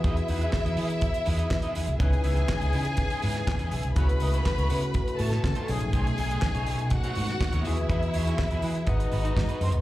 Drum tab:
HH |xxox-xoxxxox-xox|xxox-xoxxxox-xox|xxox-xoxxxox-xox|xxox-xoxxxox-xox|
CP |----x-------x---|----x-------x---|----x-------x---|----x-------x---|
SD |----o-------o---|----o------oo---|----o------oo---|----o------oo---|
BD |o---o---o---o---|o---o---o---o---|o---o---o---o---|o---o---o---o---|

HH |xxox-xoxxxox-xox|
CP |----x-------x---|
SD |----o-------o---|
BD |o---o---o---o---|